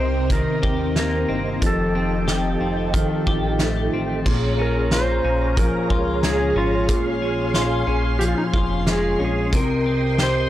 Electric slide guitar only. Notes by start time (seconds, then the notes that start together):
Already playing: C5
0.32 A#4
0.99 A#4
1.66 A4
4.61 A#4
4.93 C5
5.59 A#4
6.24 G#4
6.58 F4
8.19 G4
8.28 F4
8.38 D#4
8.47 F4
8.92 G#4
9.24 G#4
9.56 A#4
10.23 C5